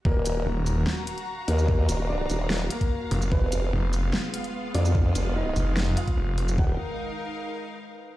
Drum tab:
HH |--x---o---xx--o-|--x---o---xx--o-|--x---o---xx--o-|--x---o---xx--o-|
SH |--x---x--------x|--x---x--------x|--x---x--------x|--x---x--------x|
SD |--------o-------|--------o-------|--------o-------|--------o-------|
BD |o---------------|o----------o----|o---------------|o----------o----|

HH |----------------|
SH |----------------|
SD |----------------|
BD |o---------------|